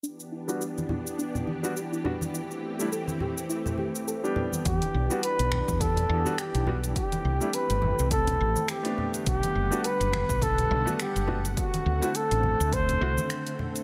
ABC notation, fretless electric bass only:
X:1
M:4/4
L:1/16
Q:"Swing 16ths" 1/4=104
K:Em
V:1 name="Fretless electric bass" clef=bass
z16 | z16 | E,, z B,,, z2 B,,,2 E,,3 E,, z2 B,,,3 | z2 C,, z2 G,,,2 C,,3 A,,, z4 z |
B,,, z F,,, z2 F,,,2 B,,,3 B,,, z2 F,,,3 | z2 D,, z2 A,,,2 D,,3 C,, z4 z |]